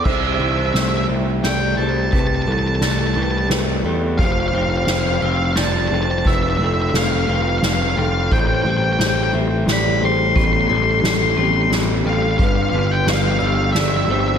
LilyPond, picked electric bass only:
\new Staff \with { instrumentName = "Picked electric bass" } { \clef bass \time 3/4 \key c \major \tempo 4 = 88 c,8 c,8 c,8 c,8 c,8 c,8 | c,8 c,8 c,8 c,8 c,8 e,8 | f,,8 f,,8 f,,8 f,,8 f,,8 f,,8 | f,,8 f,,8 f,,8 f,,8 f,,8 f,,8 |
a,,8 a,,8 a,,8 a,,8 a,,8 a,,8 | a,,8 a,,8 a,,8 a,,8 a,,8 a,,8 | g,,8 g,,8 g,,8 g,,8 g,,8 g,,8 | }